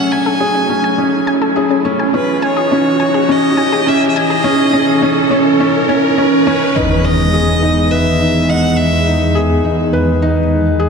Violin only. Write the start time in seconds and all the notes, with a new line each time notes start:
Already playing: F#5
0.11 G#5
2.15 B4
2.44 C#5
3.31 D#5
3.88 E5
4.09 E5
4.17 D#5
6.49 C#5
6.77 B4
7.05 D#5
7.91 E5
8.49 F#5
8.77 E5